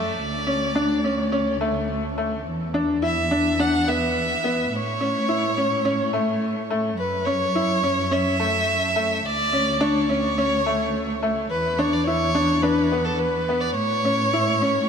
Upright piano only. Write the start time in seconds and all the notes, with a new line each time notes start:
Already playing: A3
0.47 C#4
0.75 D4
1.04 C#4
1.32 C#4
1.61 A3
2.18 A3
2.74 D4
3.02 E4
3.31 D4
3.59 D4
3.88 B3
4.44 B3
5.01 C#4
5.29 E4
5.57 C#4
5.85 C#4
6.13 A3
6.70 A3
7.26 C#4
7.55 E4
7.83 C#4
8.11 C#4
8.40 A3
8.96 A3
9.53 C#4
9.81 D4
10.09 C#4
10.38 C#4
10.66 A3
11.23 A3
11.79 D4
12.07 E4
12.35 D4
12.63 D4
12.92 B3
13.49 B3
14.05 C#4
14.33 E4
14.62 C#4